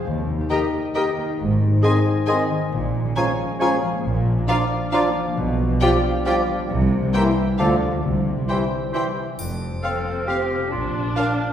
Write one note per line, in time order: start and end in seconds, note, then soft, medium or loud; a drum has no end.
0.05 0.43 D#2 medium
0.05 1.41 D#3 medium
0.18 1.16 A#3 soft
0.29 1.05 D#4 soft
0.41 1.42 G4 soft
0.50 0.66 D#3 soft
0.50 0.67 A#3 soft
0.50 0.66 G4 medium
0.50 0.67 G4 soft
0.50 0.59 A#4 medium
0.50 0.67 D#5 soft
0.50 0.59 D#5 medium
0.50 0.84 D#5 medium
0.50 0.58 G5 soft
0.50 0.58 A#5 soft
0.63 1.42 G5 medium
0.74 1.42 A#5 medium
0.85 1.93 D#5 soft
0.94 1.11 D#3 medium
0.94 1.11 A#3 medium
0.94 1.10 G4 medium
0.94 1.11 G4 medium
0.94 1.03 A#4 medium
0.94 1.41 A#4 soft
0.94 1.03 D#5 soft
0.94 1.11 D#5 medium
0.94 1.02 G5 medium
0.94 1.03 A#5 medium
1.06 1.27 D#4 soft
1.18 1.41 A#3 soft
1.28 1.71 D#4 soft
1.39 1.76 G#1 medium
1.39 1.76 G#2 medium
1.39 2.74 G#2 medium
1.51 2.49 D#3 soft
1.61 2.38 C4 soft
1.72 2.74 D#4 soft
1.82 2.00 D#3 soft
1.82 1.99 C4 medium
1.82 1.98 D#4 soft
1.82 1.90 G#4 soft
1.82 1.99 G#4 medium
1.82 2.16 C5 soft
1.82 1.93 C5 medium
1.82 1.99 D#5 medium
1.82 1.92 G#5 medium
1.82 1.93 C6 medium
1.95 2.74 D#5 medium
2.06 3.38 G#5 medium
2.17 2.74 C5 soft
2.27 2.44 D#3 medium
2.27 2.45 C4 medium
2.27 2.45 D#4 medium
2.27 2.43 G#4 medium
2.27 2.35 G#4 medium
2.27 3.60 G#4 medium
2.27 2.37 C5 medium
2.27 2.44 D#5 medium
2.27 2.35 G#5 soft
2.27 2.37 C6 medium
2.39 2.60 C4 soft
2.50 2.74 D#3 soft
2.61 2.74 C4 medium
2.71 3.09 A#1 medium
2.71 3.08 A#2 medium
2.71 4.04 A#2 medium
2.83 3.82 F3 soft
2.94 3.71 A#3 soft
3.05 4.06 C#4 soft
3.16 3.32 F3 medium
3.16 3.32 G#3 soft
3.16 3.32 C#4 medium
3.16 3.25 F4 medium
3.16 3.33 G#4 medium
3.16 3.49 A#4 medium
3.16 3.32 C#5 medium
3.16 3.25 C#5 medium
3.16 3.24 G#5 medium
3.16 3.24 A#5 medium
3.28 4.06 C#5 medium
3.39 4.06 G#5 medium
3.50 4.48 A#4 medium
3.59 3.76 F3 medium
3.59 3.75 G#3 medium
3.59 3.76 C#4 medium
3.59 3.68 F4 medium
3.59 4.06 G#4 medium
3.59 3.77 G#4 medium
3.59 3.76 C#5 medium
3.59 3.69 C#5 medium
3.59 3.69 G#5 medium
3.59 3.69 A#5 medium
3.72 3.93 A#3 soft
3.83 4.15 F3 soft
3.94 4.26 A#3 medium
4.04 4.41 A#1 medium
4.04 4.41 A#2 medium
4.04 5.39 A#2 medium
4.16 5.14 F3 medium
4.27 5.04 A#3 soft
4.38 5.69 D4 medium
4.47 4.63 F3 medium
4.47 4.64 F3 medium
4.47 4.63 D4 medium
4.47 4.64 F4 medium
4.47 4.57 F4 medium
4.47 4.81 A#4 medium
4.47 4.56 D5 medium
4.47 4.65 D5 medium
4.47 4.57 F5 medium
4.47 4.56 A#5 medium
4.61 5.91 D5 medium
4.71 6.02 F5 medium
4.82 5.39 A#4 medium
4.92 5.09 F3 medium
4.92 5.08 D4 medium
4.92 5.01 F4 medium
4.92 5.09 F4 medium
4.92 6.24 F4 medium
4.92 5.10 D5 medium
4.92 5.02 D5 medium
4.92 5.00 F5 medium
4.92 5.00 A#5 medium
5.05 5.25 A#3 medium
5.15 5.47 F3 medium
5.26 5.39 A#3 medium
5.36 5.73 B1 medium
5.36 5.73 B2 medium
5.36 6.71 B2 medium
5.48 6.46 F3 medium
5.59 6.35 G3 medium
5.70 6.71 D4 medium
5.81 5.97 F3 medium
5.81 5.98 G3 medium
5.81 5.90 F4 medium
5.81 5.98 F4 medium
5.81 6.14 G4 medium
5.81 5.98 G4 medium
5.81 5.98 D5 medium
5.81 5.91 D5 medium
5.81 5.89 G5 medium
5.93 6.71 D5 medium
6.04 6.71 F5 medium
6.15 7.60 G4 medium
6.25 6.42 F3 medium
6.25 6.43 G3 medium
6.25 6.71 F4 medium
6.25 6.34 F4 medium
6.25 6.43 F4 medium
6.25 6.42 G4 medium
6.25 6.34 D5 medium
6.25 6.43 D5 medium
6.25 6.33 G5 medium
6.25 6.34 G5 medium
6.36 6.57 G3 medium
6.48 6.71 F3 medium
6.58 6.80 G3 medium
6.69 7.06 C2 medium
6.69 7.60 C3 medium
6.69 7.06 C3 medium
6.81 7.60 G3 medium
6.92 7.60 A#3 soft
7.03 7.60 E4 medium
7.13 7.30 E3 medium
7.13 7.31 A#3 medium
7.13 7.21 E4 medium
7.13 7.31 E4 medium
7.13 7.31 G4 medium
7.13 7.46 A#4 medium
7.13 7.22 A#4 medium
7.13 7.30 C5 soft
7.13 7.22 G5 medium
7.13 7.23 A#5 medium
7.26 7.60 E5 medium
7.37 7.60 G5 soft
7.48 7.60 A#4 soft
7.58 7.96 D2 medium
7.58 8.05 D3 medium
7.58 7.96 D3 medium
7.58 7.76 F3 medium
7.58 7.75 A3 medium
7.58 7.66 F4 soft
7.58 7.75 F4 medium
7.58 7.67 A4 soft
7.58 7.76 A4 medium
7.58 7.75 D5 medium
7.58 7.66 F5 medium
7.58 7.67 A5 soft
7.70 8.05 F3 soft
7.81 8.05 A3 soft
7.93 8.06 F4 soft
8.03 8.41 C2 medium
8.03 8.41 C3 medium
8.03 9.41 C3 medium
8.15 9.16 G3 soft
8.26 9.04 C4 soft
8.38 9.41 E4 soft
8.47 8.65 E3 soft
8.47 8.64 G3 soft
8.47 8.63 E4 soft
8.47 8.56 E4 soft
8.47 8.65 G4 soft
8.47 8.64 C5 soft
8.47 8.57 C5 soft
8.47 8.82 C5 soft
8.47 8.57 G5 soft
8.47 8.57 C6 soft
8.61 9.41 E5 soft
8.73 9.41 G5 soft
8.84 10.74 C5 soft
8.91 9.10 E3 soft
8.91 9.08 G3 soft
8.91 9.07 E4 soft
8.91 9.01 E4 soft
8.91 9.08 G4 soft
8.91 9.41 G4 soft
8.91 9.09 C5 soft
8.91 9.02 C5 soft
8.91 9.03 G5 soft
8.91 9.03 C6 soft
9.05 9.27 C4 soft
9.17 9.41 G3 soft
9.28 9.61 C4 soft
9.39 9.76 F1 soft
9.39 9.76 F2 soft
9.39 10.74 F2 soft
9.39 triangle soft
9.62 10.05 C4 soft
9.83 10.21 A#3 soft
9.83 10.67 C4 soft
9.83 9.99 C4 soft
9.83 10.24 A4 medium
9.83 9.92 C5 soft
9.83 9.99 F5 soft
9.83 9.91 F5 soft
10.06 10.74 C4 soft
10.26 10.74 A3 soft
10.26 10.43 C4 soft
10.26 10.71 G4 medium
10.26 10.36 C5 soft
10.26 10.42 F5 soft
10.26 10.37 F5 soft
10.51 10.74 C3 soft
10.71 11.09 A#1 soft
10.71 11.08 A#2 soft
10.71 11.53 A#2 soft
10.71 11.53 D4 medium
10.71 11.18 F4 medium
10.95 11.38 D4 soft
11.16 11.32 A#3 soft
11.16 11.53 C4 soft
11.16 11.53 D4 medium
11.16 11.25 A#4 soft
11.16 11.26 D5 soft
11.16 11.24 F5 medium
11.16 11.33 F5 soft
11.39 11.53 D4 soft